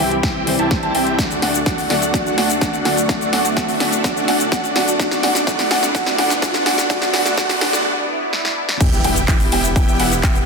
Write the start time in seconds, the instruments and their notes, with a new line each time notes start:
Already playing: analog synth pad C4 E4 G4 D5 G5, riser
0.00 detuned saw bass C2, felt piano E3 G3 C4 G4, supersaw synth C4 E4 G4 E5 G5, grand piano G5
0.11 closed hi-hat
0.23 detuned saw bass C2, supersaw synth C4 E4 G4 E5 G5, grand piano G5, kick, snare, closed hi-hat
0.46 felt piano E3 G3 C4 C5, open hi-hat
0.59 detuned saw bass C2, supersaw synth C4 E4 G4 E5 A5, grand piano A5, closed hi-hat
0.71 kick, snare, closed hi-hat
0.83 detuned saw bass C2, supersaw synth C4 E4 G4 E5 A5, grand piano A5, closed hi-hat
0.95 detuned saw bass C2, supersaw synth C4 E4 G4 E5 G5, grand piano G5, open hi-hat
1.07 closed hi-hat
1.17 detuned saw bass D2, felt piano D3 F#3 A3 F#4, analog synth pad A3 D4 F#4 F#5, supersaw synth A3 D4 F#4 D5 F#5, kick, snare, closed hi-hat, cabasa
1.30 closed hi-hat, cabasa
1.42 detuned saw bass D2, supersaw synth A3 D4 F#4 D5 F#5, grand piano F#5, snare, open hi-hat
1.54 closed hi-hat, cabasa
1.66 detuned saw bass D2, supersaw synth A3 D4 F#4 D5 F#5, grand piano F#5, kick, snare, closed hi-hat, cabasa
1.78 open hi-hat, cabasa
1.89 detuned saw bass D2, felt piano D3 F#3 A3 F#4, supersaw synth A3 D4 F#4 D5 F#5, grand piano F#5, snare, open hi-hat
2.02 closed hi-hat, cabasa
2.13 detuned saw bass D2, felt piano D3 F#3 A3 F#4, supersaw synth A3 D4 F#4 D5 F#5, grand piano F#5, kick, snare, closed hi-hat, cabasa
2.27 cabasa
2.38 detuned saw bass D2, supersaw synth A3 D4 F#4 D5 F#5, grand piano F#5, snare, open hi-hat
2.50 closed hi-hat, cabasa
2.61 detuned saw bass D2, supersaw synth A3 D4 F#4 D5 F#5, grand piano F#5, kick, snare, closed hi-hat, cabasa
2.73 closed hi-hat, cabasa
2.85 detuned saw bass D2, felt piano D3 F#3 A3 F#4, supersaw synth A3 D4 F#4 D5 F#5, grand piano F#5, snare, open hi-hat
2.97 closed hi-hat, cabasa
3.08 detuned saw bass D2, felt piano D3 F#3 A3, supersaw synth A3 D4 F#4 D5 F#5, analog synth pad E5, grand piano F#5, kick, snare, closed hi-hat, cabasa
3.21 closed hi-hat, cabasa
3.33 detuned saw bass D2, supersaw synth A3 D4 F#4 D5 F#5, grand piano F#5, snare, open hi-hat
3.45 closed hi-hat, cabasa
3.57 detuned saw bass D2, supersaw synth A3 D4 F#4 D5 F#5, grand piano F#5, kick, snare, closed hi-hat, cabasa
3.69 open hi-hat, cabasa
3.80 detuned saw bass D2, felt piano D3 F#3 A3 F#4, supersaw synth A3 D4 F#4 D5 F#5, grand piano F#5, snare, open hi-hat
3.92 closed hi-hat, cabasa
4.03 detuned saw bass D2, felt piano D3 F#3, supersaw synth A3 D4 F#4 D5 F#5, grand piano F#5, kick, snare, closed hi-hat, cabasa
4.17 cabasa
4.28 detuned saw bass D2, supersaw synth A3 D4 F#4 D5 F#5, grand piano F#5, snare, open hi-hat
4.40 closed hi-hat, cabasa
4.52 detuned saw bass D2, supersaw synth A3 D4 F#4 D5 F#5, grand piano F#5, kick, snare, closed hi-hat, cabasa
4.64 closed hi-hat, cabasa
4.75 detuned saw bass D2, felt piano D3 F#3 A3 F#4, supersaw synth A3 D4 F#4 D5 F#5, grand piano F#5, snare, open hi-hat
4.88 closed hi-hat, cabasa
4.99 detuned saw bass G1, felt piano D3 F#3 A3 F#4, supersaw synth A3 D4 F#4 D5 F#5, analog synth pad B3, grand piano F#5, kick, snare, closed hi-hat, cabasa
5.11 snare, closed hi-hat, cabasa
5.23 detuned saw bass G1, supersaw synth A3 D4 F#4 D5 F#5, grand piano F#5, snare, open hi-hat
5.35 snare, closed hi-hat, cabasa
5.46 detuned saw bass G1, felt piano D3 F#3 A3 F#4, supersaw synth A3 D4 F#4 D5 F#5, grand piano F#5, kick, snare, closed hi-hat, cabasa
5.59 snare, open hi-hat, cabasa
5.71 detuned saw bass G1, supersaw synth A3 D4 F#4 D5 F#5, grand piano F#5, snare, open hi-hat
5.83 snare, closed hi-hat, cabasa
5.94 detuned saw bass G1, felt piano D3 F#3 A3 F#4, supersaw synth A3 D4 F#4 D5 F#5, grand piano F#5, kick, snare, closed hi-hat, cabasa
6.07 snare, cabasa
6.18 detuned saw bass G1, supersaw synth A3 D4 F#4 D5 F#5, grand piano F#5, snare, open hi-hat
6.30 snare, closed hi-hat, cabasa
6.41 detuned saw bass G1, felt piano D3 F#3 A3 F#4, supersaw synth A3 D4 F#4 D5 F#5, grand piano F#5, kick, snare, closed hi-hat, cabasa
6.54 snare, closed hi-hat, cabasa
6.66 detuned saw bass G1, supersaw synth A3 D4 F#4 D5 F#5, grand piano F#5, snare, open hi-hat
6.78 snare, closed hi-hat, cabasa
6.89 detuned saw bass G1, felt piano D3 F#3 A3 F#4, supersaw synth A3 D4 F#4 D5 F#5, grand piano F#5, kick, snare, closed hi-hat, cabasa
7.02 snare, closed hi-hat, cabasa
7.13 detuned saw bass G1, felt piano D3 F#3 A3 F#4, supersaw synth A3 D4 F#4 D5 F#5, grand piano F#5, snare, open hi-hat
7.26 snare, closed hi-hat, cabasa
7.36 detuned saw bass G1, felt piano D3 F#3 A3 F#4, supersaw synth A3 D4 F#4 D5 F#5, grand piano F#5, kick, snare, closed hi-hat, cabasa
7.49 snare, open hi-hat, cabasa
7.60 detuned saw bass G1, felt piano D3 F#3 A3 F#4, supersaw synth A3 D4 F#4 D5 F#5, grand piano F#5, snare, open hi-hat
7.73 snare, closed hi-hat, cabasa
7.85 swell
8.33 snare
8.45 snare
8.69 snare
8.80 detuned saw bass E1, supersaw synth B3 E4 G4 E5 G5, analog synth pad B3 E4 G4 E5 G5, grand piano G5, kick, closed hi-hat, crash, impact, cabasa
8.93 closed hi-hat, cabasa
9.04 detuned saw bass E1, supersaw synth B3 E4 G4 E5 G5, grand piano G5, open hi-hat, ride
9.16 closed hi-hat, cabasa
9.28 detuned saw bass E1, supersaw synth B3 E4 G4 E5 G5, grand piano G5, kick, clap, closed hi-hat, cabasa
9.40 open hi-hat, cabasa
9.52 detuned saw bass E1, supersaw synth B3 E4 G4 E5 G5, grand piano G5, open hi-hat, ride
9.64 closed hi-hat, cabasa
9.76 detuned saw bass E1, supersaw synth B3 E4 G4 E5 G5, grand piano G5, kick, closed hi-hat, cabasa
9.89 cabasa
10.00 detuned saw bass E1, supersaw synth B3 E4 G4 E5 F#5, grand piano F#5, open hi-hat, ride
10.12 closed hi-hat, cabasa
10.23 detuned saw bass E1, supersaw synth B3 E4 G4 E5 G5, grand piano G5, kick, clap, closed hi-hat, cabasa
10.35 closed hi-hat, cabasa